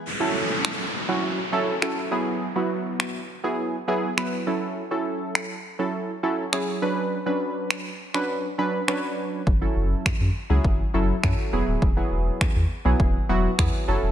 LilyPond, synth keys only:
\new Staff \with { instrumentName = "Synth keys" } { \time 4/4 \key fis \minor \tempo 4 = 102 r16 <fis cis' e' a'>4 r8 <fis cis' e' fis'>8 r16 <fis cis' e' a'>16 r16 <fis cis' e' a'>8 <fis b e' gis'>8 | r16 <fis b e' fis'>4 r8 <fis b e' gis'>8 r16 <fis b e' gis'>16 r16 <fis b e' b'>8 <fis cis' e' a'>8 | r16 <fis cis' e' a'>4 r8 <fis cis' e' a'>8 r16 <fis cis' e' a'>16 r16 <fis cis' e' gis'>8 <fis cis' d' b'>8 | r16 <fis cis' d' b'>4 r8 <fis cis' d' b'>8 r16 <fis cis' d' b'>16 r16 <fis cis' d' b' cis''>4 |
r16 <fis cis' e' a'>4 r8 <fis cis' e' gis'>8 r16 <fis cis' e' a'>16 r16 <fis cis' e' a'>8 <fis b e' gis'>8 | r16 <fis b e' gis'>4 r8 <fis b e' gis'>8 r16 <fis b e' fis'>16 r16 <fis b e' gis'>8 <fis cis' e' a'>8 | }